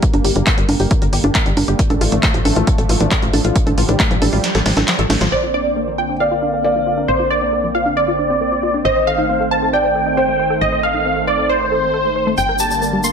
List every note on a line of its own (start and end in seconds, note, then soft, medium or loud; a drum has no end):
0.00 5.28 D3 medium
0.00 1.75 G3 medium
0.00 1.75 A#3 medium
0.00 kick loud
0.00 closed hi-hat medium
0.14 0.21 G1 medium
0.14 0.18 A#4 medium
0.14 closed hi-hat soft
0.14 high conga medium
0.24 0.32 G1 loud
0.24 0.32 G4 medium
0.24 open hi-hat loud
0.36 0.43 G1 medium
0.36 0.43 D4 medium
0.36 closed hi-hat soft
0.47 0.57 A#3 medium
0.47 kick loud
0.47 clap loud
0.47 closed hi-hat medium
0.58 0.65 G1 medium
0.58 0.65 G3 medium
0.58 closed hi-hat soft
0.69 0.76 G1 loud
0.69 0.76 A#4 medium
0.69 open hi-hat loud
0.69 high conga medium
0.80 0.87 G1 medium
0.80 0.90 G4 medium
0.80 open hi-hat medium
0.91 kick loud
0.91 closed hi-hat medium
1.02 1.09 G1 medium
1.02 1.06 A#4 medium
1.02 closed hi-hat soft
1.13 1.20 G1 medium
1.13 1.20 G4 medium
1.13 open hi-hat loud
1.24 1.31 G1 medium
1.24 1.31 D4 medium
1.24 closed hi-hat soft
1.24 high conga medium
1.35 1.45 A#3 medium
1.35 kick loud
1.35 clap loud
1.35 closed hi-hat medium
1.46 1.53 G1 medium
1.46 1.53 G3 medium
1.46 closed hi-hat soft
1.57 1.64 G1 medium
1.57 1.64 A#4 medium
1.57 open hi-hat loud
1.57 high conga medium
1.68 1.75 G1 medium
1.68 1.78 G4 medium
1.68 closed hi-hat soft
1.79 5.29 F3 medium
1.79 3.54 A3 medium
1.79 kick loud
1.79 closed hi-hat medium
1.90 1.97 A1 medium
1.90 1.94 A4 medium
1.90 closed hi-hat soft
1.90 high conga medium
2.01 2.08 A1 loud
2.01 2.08 F4 medium
2.01 open hi-hat loud
2.12 2.19 A1 loud
2.12 2.19 D4 medium
2.12 closed hi-hat soft
2.23 2.34 A3 medium
2.23 kick loud
2.23 clap loud
2.23 closed hi-hat medium
2.34 2.41 A1 medium
2.34 2.41 F3 medium
2.34 closed hi-hat soft
2.45 2.52 A1 medium
2.45 2.52 A4 medium
2.45 open hi-hat loud
2.45 high conga medium
2.56 2.63 A1 medium
2.56 2.67 F4 medium
2.56 closed hi-hat soft
2.67 kick loud
2.67 closed hi-hat medium
2.78 2.85 A1 medium
2.78 2.83 A4 medium
2.78 closed hi-hat soft
2.89 2.96 A1 loud
2.89 2.97 F4 medium
2.89 open hi-hat loud
3.00 3.07 A1 medium
3.00 3.08 D4 medium
3.00 closed hi-hat soft
3.11 3.22 A3 medium
3.11 kick loud
3.11 clap loud
3.11 closed hi-hat loud
3.22 3.29 A1 medium
3.22 3.30 F3 medium
3.22 closed hi-hat soft
3.33 3.41 A1 loud
3.33 3.41 A4 medium
3.33 open hi-hat loud
3.33 high conga medium
3.44 3.52 A1 medium
3.44 3.55 F4 medium
3.44 closed hi-hat soft
3.56 5.30 G3 medium
3.56 kick loud
3.56 closed hi-hat loud
3.66 3.74 A1 medium
3.66 3.71 A4 medium
3.66 closed hi-hat soft
3.66 high conga medium
3.78 3.85 A1 loud
3.78 3.85 F4 medium
3.78 open hi-hat loud
3.89 3.96 A1 medium
3.89 3.96 D4 medium
3.89 closed hi-hat soft
4.00 4.10 A3 medium
4.00 kick loud
4.00 clap loud
4.00 closed hi-hat loud
4.11 4.18 A1 medium
4.11 4.18 F3 medium
4.11 closed hi-hat soft
4.22 4.29 A1 loud
4.22 4.29 A4 medium
4.22 open hi-hat loud
4.22 high conga medium
4.33 4.40 A1 medium
4.33 4.43 F4 medium
4.33 open hi-hat medium
4.44 snare medium
4.44 closed hi-hat medium
4.55 4.62 A1 medium
4.55 4.59 A4 medium
4.55 snare medium
4.55 closed hi-hat soft
4.66 4.73 A1 loud
4.66 4.73 D4 medium
4.66 snare medium
4.66 open hi-hat loud
4.77 4.84 A1 loud
4.77 4.81 A4 medium
4.77 snare medium
4.77 closed hi-hat soft
4.77 high conga medium
4.88 4.95 F3 medium
4.88 snare medium
4.88 clap loud
4.88 closed hi-hat medium
4.99 5.06 A1 medium
4.99 5.06 A4 medium
4.99 closed hi-hat soft
5.10 5.17 A1 loud
5.10 5.21 A3 medium
5.10 snare loud
5.10 open hi-hat loud
5.10 high conga medium
5.21 5.28 A1 medium
5.21 5.28 F3 medium
5.21 snare medium
5.21 closed hi-hat soft
5.32 7.06 A#1 medium
5.32 8.81 D3 medium
5.32 8.81 A#3 medium
5.32 12.34 C4 medium
5.32 6.11 C5 medium
5.32 5.51 D5 medium
5.32 5.51 D5 loud
5.43 5.47 F4 medium
5.54 5.61 D4 medium
5.54 5.92 D5 medium
5.65 5.72 C4 medium
5.76 5.87 A#3 medium
5.87 5.94 F3 medium
5.98 6.05 F4 medium
5.98 6.17 G5 medium
6.09 6.20 D4 medium
6.20 6.62 D5 medium
6.20 7.00 F5 medium
6.31 6.36 F4 medium
6.42 6.50 D4 medium
6.53 6.61 C4 medium
6.64 6.75 A#3 medium
6.64 7.22 D5 medium
6.75 6.83 F3 medium
6.86 6.94 F4 medium
6.97 7.08 D4 medium
7.08 8.83 A#1 medium
7.08 7.27 C5 medium
7.08 7.28 C5 medium
7.19 7.24 F4 medium
7.30 7.38 D4 medium
7.30 7.69 D5 medium
7.42 7.49 C4 medium
7.53 7.63 A#3 medium
7.64 7.71 F3 medium
7.75 7.82 F4 medium
7.75 7.94 F5 medium
7.86 7.96 D4 medium
7.97 8.76 D5 loud
7.97 8.76 D5 medium
8.08 8.12 F4 medium
8.19 8.26 D4 medium
8.30 8.37 C4 medium
8.41 8.51 A#3 medium
8.52 8.59 F3 medium
8.63 8.70 F4 medium
8.74 8.84 D4 medium
8.85 10.59 A1 medium
8.85 12.34 D#3 medium
8.85 12.34 A3 medium
8.85 9.64 C5 medium
8.85 9.04 D#5 medium
8.96 9.00 C5 medium
9.07 9.14 A4 medium
9.07 9.45 F5 medium
9.18 9.25 D#4 medium
9.29 9.40 C4 medium
9.40 9.47 A3 medium
9.51 9.58 C5 medium
9.51 9.70 A5 medium
9.62 9.73 A4 medium
9.73 10.15 D5 medium
9.73 10.53 G5 medium
9.84 9.89 C5 medium
9.95 10.02 A4 medium
10.06 10.13 D#4 medium
10.17 10.28 C4 medium
10.17 10.75 C5 medium
10.28 10.36 A3 medium
10.39 10.47 C5 medium
10.50 10.61 A4 medium
10.61 12.36 A1 medium
10.61 10.80 D#5 loud
10.61 10.81 D#5 medium
10.72 10.77 C5 medium
10.83 10.91 A4 medium
10.83 11.22 F5 medium
10.94 11.02 D#4 medium
11.05 11.16 C4 medium
11.16 11.24 A3 medium
11.27 11.35 C5 medium
11.27 11.47 D5 medium
11.38 11.49 A4 medium
11.49 12.29 C5 medium
11.49 12.29 C5 loud
11.61 11.65 C5 medium
11.72 11.79 A4 medium
11.83 11.87 A3 medium
11.94 11.98 A4 medium
12.05 12.09 A3 medium
12.16 12.23 C5 medium
12.27 12.34 A3 loud
12.38 13.12 G1 medium
12.38 13.12 D3 medium
12.38 13.12 G3 medium
12.38 13.12 A#3 medium
12.38 12.57 G5 medium
12.38 shaker soft
12.49 12.53 A#4 medium
12.59 12.67 G4 medium
12.59 12.98 A5 medium
12.59 shaker medium
12.71 12.78 D4 medium
12.71 shaker soft
12.82 12.92 A#3 medium
12.82 shaker soft
12.93 13.00 G3 medium
13.04 13.11 A#3 medium
13.04 13.12 C6 medium
13.04 shaker medium